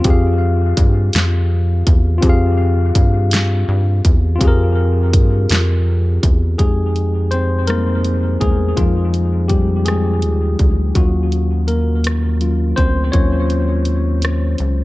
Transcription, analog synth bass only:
0.05 F2
0.78 G2
1.15 F2
1.87 E2
2.23 F2
2.96 G2
3.68 G2
4.05 E2
4.41 F2
5.14 G2
5.50 F2
6.24 E2
6.60 F2
8.41 E2
8.77 F2
10.23 D#2
10.60 D2
10.96 D#2
12.78 D2
13.14 D#2
14.60 C#2

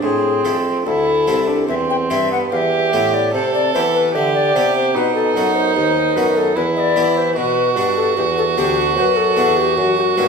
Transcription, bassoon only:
0.02 A2
0.45 F2
0.86 D2
1.27 C2
1.69 E2
2.11 G2
2.52 E2
2.93 A2
3.34 C3
3.75 E3
4.15 D3
4.55 C3
4.95 B2
5.35 F#2
5.76 D#2
6.16 F#2
6.56 E2
6.96 E3
7.37 B2
7.77 G2
8.17 E2
8.57 D2
8.97 F#2
9.37 E2
9.77 F#2
10.17 G2

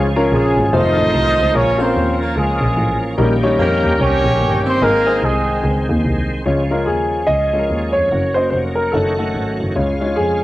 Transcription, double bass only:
Already playing: C#2
0.32 A#1
0.57 G#1
0.73 F1
0.98 A1
1.14 C2
1.39 C#2
1.55 A#1
1.96 D#2
2.36 C#2
2.61 A#1
2.77 A1
3.18 A#1
3.58 F2
3.84 D#2
4.00 C2
4.25 A#1
4.41 G1
4.82 G#1
5.22 C2
5.64 C#2
5.89 D#2
6.05 C2
6.46 C#2
6.87 D#2
7.28 C#2
7.70 D#2
7.95 F2
8.12 F#1
8.52 F1
8.94 F#1
9.35 G#1
9.60 F#1
9.76 C#2
10.18 F2

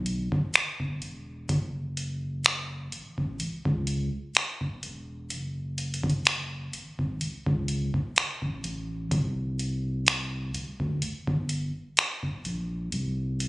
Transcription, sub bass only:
Already playing: B1
0.80 G1
1.02 E1
1.49 F#1
2.92 A1
3.18 A1
3.40 C#2
3.65 C#2
4.83 E1
5.31 F#1
6.74 G#1
6.99 G#1
7.21 C#2
7.47 C#2
8.42 A1
8.64 A1
9.11 C2
10.54 D2
10.80 D2
11.02 G1
11.28 G1
12.45 A#1
12.92 C2

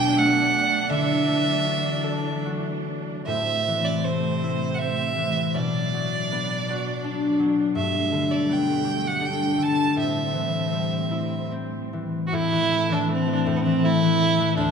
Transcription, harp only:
Already playing: B2 F#3 A3 D4
0.16 A3
0.90 D3
1.27 A3
1.64 F#4
2.04 A4
2.46 F#4
3.27 A2
3.67 E3
4.07 A3
4.43 E4
4.80 C4
5.16 E3
5.55 B2
5.94 F#3
6.32 B3
6.70 F#4
7.04 D4
7.39 F#3
7.75 G2
8.12 D3
8.49 B3
8.84 G4
9.21 D4
9.58 D3
9.96 A2
10.34 E3
10.72 G3
11.11 E4
11.52 C4
11.93 E3
12.32 A2
12.52 E3
12.71 A3
12.89 E3
13.08 A3
13.27 E3
13.47 A2
13.66 E3
13.84 A3
14.03 E3
14.22 A3
14.40 E3
14.57 D2

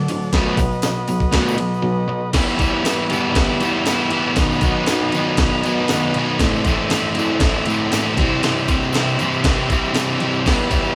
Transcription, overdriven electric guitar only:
0.10 D3 F#3
0.35 B2 F#3 A3
0.60 B2 F#3
0.84 B2 F#3
1.09 B2 F#3
1.32 B2 F#3 A3
1.57 B2 F#3
1.82 B2 F#3
2.08 B2 F#3
2.33 E3 G3 B3 E4
2.58 E3 G3 B3 E4
2.84 E3 G3 B3 E4
3.10 E3 G3 B3 E4
3.34 E3 G3 B3 E4
3.60 E3 G3 B3 E4
3.87 E3 G3 B3 E4
4.10 E3 G3 B3 E4
4.36 B2 D#3 F#3 B3 D#4
4.61 B2 D#3 F#3 B3 D#4
4.87 B2 D#3 F#3 B3 D#4
5.13 B2 D#3 F#3 B3 D#4
5.38 B2 D#3 F#3 B3 D#4
5.63 B2 D#3 F#3 B3 D#4
5.90 B2 D#3 F#3 B3 D#4
6.15 B2 D#3 F#3 B3 D#4
6.40 A2 E3 A3 C4 E4
6.66 A2 E3 A3 C4 E4
6.90 A2 E3 A3 C4 E4
7.14 A2 E3 A3 C4 E4
7.40 A2 E3 A3 C4 E4
7.65 A2 E3 A3 C4 E4
7.92 A2 E3 A3 C4 E4
8.18 C3 E3 G3 C4 E4
8.42 C3 E3 G3 C4 E4
8.67 C3 E3 G3 C4 E4
8.94 C3 E3 G3 C4 E4
9.19 C3 E3 G3 C4 E4
9.45 C3 E3 G3 C4 E4
9.70 C3 E3 G3 C4 E4
9.94 C3 E3 G3 C4 E4
10.20 C3 E3 G3 C4 E4
10.46 E3 G3 B3 E4
10.70 E3 G3 B3 E4

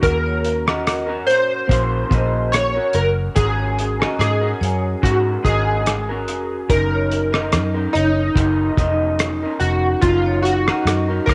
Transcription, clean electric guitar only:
0.01 A#3 C#4 F#4 A#4
0.66 C#4 F#4 A#4
1.07 C#4 F#4 A#4
1.67 A#3 C#4 F#4 A#4
2.10 A#3 C#4 F#4 A#4
2.75 C#4 F#4 A#4
3.35 G#3 C#4 F#4 A#4
4.00 C#4 F#4 A#4
4.41 C#4 F#4 A#4
5.02 G#3 C#4 F#4 A#4
5.42 G#3 C#4 F#4 A#4
6.09 C#4 F#4 A#4
6.69 F#3 C#4 D#4 A#4
7.32 C#4 D#4 A#4
7.74 C#4 D#4 A#4
8.35 F#3 C#4 D#4 A#4
8.77 F#3 C#4 D#4 A#4
9.43 C#4 D#4 A#4
10.02 F#3 C#4 D#4 A#4
10.66 C#4 D#4 A#4
11.08 C#4 D#4 A#4

